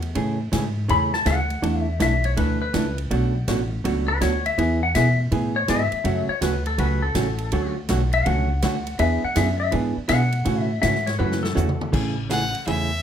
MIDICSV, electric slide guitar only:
0, 0, Header, 1, 2, 480
1, 0, Start_track
1, 0, Key_signature, 3, "major"
1, 0, Tempo, 368098
1, 203, Time_signature, 4, 2, 24, 8
1, 16981, End_track
2, 0, Start_track
2, 0, Title_t, "Electric slide guitar"
2, 0, Program_c, 0, 29
2, 1181, Note_on_c, 0, 83, 94
2, 1475, Note_off_c, 0, 83, 0
2, 1485, Note_on_c, 0, 81, 84
2, 1644, Note_off_c, 0, 81, 0
2, 1653, Note_on_c, 0, 78, 105
2, 2358, Note_off_c, 0, 78, 0
2, 2358, Note_on_c, 0, 76, 105
2, 2581, Note_off_c, 0, 76, 0
2, 2636, Note_on_c, 0, 76, 84
2, 2924, Note_off_c, 0, 76, 0
2, 2938, Note_on_c, 0, 73, 80
2, 3091, Note_off_c, 0, 73, 0
2, 3099, Note_on_c, 0, 71, 83
2, 3395, Note_off_c, 0, 71, 0
2, 3411, Note_on_c, 0, 71, 95
2, 3870, Note_off_c, 0, 71, 0
2, 5324, Note_on_c, 0, 71, 103
2, 5484, Note_off_c, 0, 71, 0
2, 5497, Note_on_c, 0, 73, 95
2, 5794, Note_off_c, 0, 73, 0
2, 5815, Note_on_c, 0, 76, 93
2, 6272, Note_off_c, 0, 76, 0
2, 6299, Note_on_c, 0, 78, 96
2, 6447, Note_off_c, 0, 78, 0
2, 6452, Note_on_c, 0, 76, 95
2, 6752, Note_off_c, 0, 76, 0
2, 7252, Note_on_c, 0, 73, 97
2, 7409, Note_off_c, 0, 73, 0
2, 7428, Note_on_c, 0, 76, 93
2, 8186, Note_off_c, 0, 76, 0
2, 8205, Note_on_c, 0, 73, 86
2, 8365, Note_off_c, 0, 73, 0
2, 8384, Note_on_c, 0, 71, 86
2, 8678, Note_off_c, 0, 71, 0
2, 8695, Note_on_c, 0, 69, 82
2, 8851, Note_off_c, 0, 69, 0
2, 8861, Note_on_c, 0, 71, 92
2, 9157, Note_off_c, 0, 71, 0
2, 9159, Note_on_c, 0, 69, 103
2, 10090, Note_off_c, 0, 69, 0
2, 10610, Note_on_c, 0, 76, 95
2, 10772, Note_off_c, 0, 76, 0
2, 10772, Note_on_c, 0, 78, 86
2, 11700, Note_off_c, 0, 78, 0
2, 11731, Note_on_c, 0, 76, 87
2, 12031, Note_off_c, 0, 76, 0
2, 12056, Note_on_c, 0, 78, 94
2, 12210, Note_off_c, 0, 78, 0
2, 12216, Note_on_c, 0, 76, 93
2, 12500, Note_off_c, 0, 76, 0
2, 12515, Note_on_c, 0, 76, 94
2, 12679, Note_off_c, 0, 76, 0
2, 13162, Note_on_c, 0, 78, 107
2, 13827, Note_off_c, 0, 78, 0
2, 13827, Note_on_c, 0, 76, 107
2, 14094, Note_off_c, 0, 76, 0
2, 14105, Note_on_c, 0, 76, 85
2, 14417, Note_off_c, 0, 76, 0
2, 14429, Note_on_c, 0, 73, 86
2, 14583, Note_off_c, 0, 73, 0
2, 14588, Note_on_c, 0, 71, 86
2, 14898, Note_off_c, 0, 71, 0
2, 14903, Note_on_c, 0, 69, 104
2, 15538, Note_off_c, 0, 69, 0
2, 16981, End_track
0, 0, End_of_file